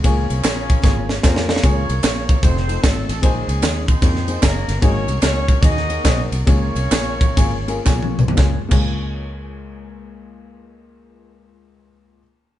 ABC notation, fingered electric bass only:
X:1
M:4/4
L:1/8
Q:"Swing" 1/4=147
K:Db
V:1 name="Fingered electric bass" clef=bass
D,, C,, B,,,2 A,,,2 F,,2 | D,, C,, B,,,2 F,,,2 A,,, =A,,, | B,,, D,, E,,2 F,,2 G,,, =G,,, | A,,, C,, D,,2 E,,2 _C,, =C,, |
D,, C,, B,,,2 A,,,2 _C,, =C,, | D,, D,,6- D,,- | D,,8 |]